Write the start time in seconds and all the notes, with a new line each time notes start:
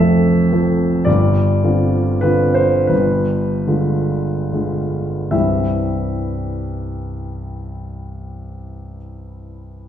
Already playing: F1 F2 E5
0.00 F3 C4 A4
0.52 F3 C4 A4
1.05 G1 G2 D5
1.63 D3 C4 F4
2.21 D3 C4 F4 B4
2.54 C5
2.87 G1 G2 B4
3.67 D3 G#3 F4
4.52 D3 G#3 F4
5.31 C2 G2 E3 G3 C4 E4 E5